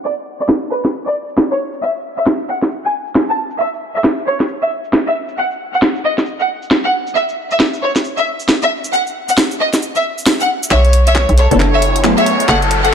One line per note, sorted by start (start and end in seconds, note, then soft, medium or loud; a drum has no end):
0.04 0.12 D5 medium
0.04 cabasa medium
0.18 cabasa soft
0.40 0.48 D5 medium
0.40 cabasa medium
0.48 snare loud
0.48 cabasa medium
0.62 cabasa soft
0.71 0.79 B4 medium
0.84 snare medium
0.84 cabasa medium
0.93 cabasa medium
1.07 1.15 D5 medium
1.07 cabasa soft
1.29 cabasa medium
1.38 snare loud
1.38 cabasa medium
1.51 1.59 C#5 medium
1.51 cabasa soft
1.73 cabasa medium
1.82 1.90 E5 medium
1.82 cabasa medium
1.96 cabasa soft
2.18 2.26 E5 medium
2.18 cabasa medium
2.27 snare loud
2.27 cabasa medium
2.40 cabasa soft
2.49 2.57 F#5 medium
2.62 snare medium
2.62 cabasa medium
2.71 cabasa medium
2.85 2.93 G#5 medium
2.85 cabasa soft
3.07 cabasa medium
3.15 snare loud
3.15 cabasa medium
3.29 3.37 A5 medium
3.29 cabasa soft
3.51 cabasa medium
3.60 3.68 E5 medium
3.60 cabasa medium
3.74 cabasa soft
3.96 4.04 E5 medium
3.96 cabasa medium
4.04 snare loud
4.04 cabasa medium
4.18 cabasa soft
4.26 4.34 C#5 medium
4.40 snare medium
4.40 cabasa medium
4.48 cabasa medium
4.62 4.70 E5 medium
4.62 cabasa soft
4.84 cabasa medium
4.93 snare loud
4.93 cabasa soft
5.07 5.15 E5 medium
5.07 cabasa soft
5.28 cabasa medium
5.37 5.46 F#5 medium
5.37 cabasa medium
5.51 cabasa soft
5.74 5.82 F#5 medium
5.74 cabasa medium
5.82 snare loud
5.82 cabasa medium
5.96 cabasa soft
6.04 6.12 D#5 medium
6.18 snare medium
6.18 cabasa medium
6.26 cabasa medium
6.40 6.48 F#5 medium
6.40 cabasa soft
6.62 cabasa medium
6.70 snare loud
6.70 cabasa medium
6.85 6.93 F#5 medium
6.85 cabasa soft
7.07 cabasa medium
7.15 7.23 E5 medium
7.15 cabasa medium
7.29 cabasa soft
7.51 7.59 E5 medium
7.51 cabasa medium
7.60 snare loud
7.60 cabasa medium
7.74 cabasa soft
7.82 7.90 C#5 medium
7.96 snare medium
7.96 cabasa medium
8.04 cabasa soft
8.18 8.26 E5 medium
8.18 cabasa soft
8.40 cabasa medium
8.48 snare loud
8.48 cabasa medium
8.62 8.70 E5 medium
8.62 cabasa soft
8.84 cabasa medium
8.93 9.01 F#5 medium
8.93 cabasa medium
9.07 cabasa soft
9.29 9.37 F#5 medium
9.29 cabasa medium
9.38 snare loud
9.38 cabasa medium
9.51 cabasa soft
9.60 9.68 D#5 medium
9.73 snare medium
9.73 cabasa medium
9.82 cabasa medium
9.95 10.04 E5 medium
9.95 cabasa soft
10.18 cabasa medium
10.26 snare loud
10.26 cabasa medium
10.40 10.48 F#5 medium
10.40 cabasa soft
10.63 cabasa medium
10.71 11.26 B1 medium
10.71 10.89 C#5 medium
10.71 10.79 E5 medium
10.71 kick loud
10.71 clap soft
10.71 riser medium
10.85 closed hi-hat soft
10.93 open hi-hat loud
11.07 11.23 C#5 medium
11.07 11.15 E5 medium
11.07 closed hi-hat medium
11.15 kick loud
11.15 clap soft
11.29 11.48 B1 medium
11.29 closed hi-hat soft
11.38 11.56 A4 medium
11.38 11.46 C#5 medium
11.38 open hi-hat loud
11.51 12.15 F#1 medium
11.51 12.02 B3 medium
11.51 12.02 D4 medium
11.51 12.02 E4 medium
11.51 12.02 A4 medium
11.51 12.02 C#5 medium
11.51 closed hi-hat medium
11.60 kick loud
11.60 clap soft
11.73 11.96 C#5 medium
11.73 11.81 E5 medium
11.82 open hi-hat loud
11.96 closed hi-hat medium
12.04 12.94 F#3 medium
12.04 12.94 A3 medium
12.04 12.94 B3 medium
12.04 12.94 E4 medium
12.04 12.94 G#4 medium
12.04 kick medium
12.04 clap medium
12.18 12.34 C#5 medium
12.18 12.26 E5 medium
12.18 closed hi-hat soft
12.26 open hi-hat loud
12.40 closed hi-hat medium
12.49 12.94 F#1 loud
12.49 12.67 A4 medium
12.49 12.57 F#5 medium
12.49 kick loud
12.49 clap medium
12.62 closed hi-hat soft
12.71 open hi-hat loud
12.84 12.94 A4 medium
12.84 12.92 F#5 medium
12.84 closed hi-hat medium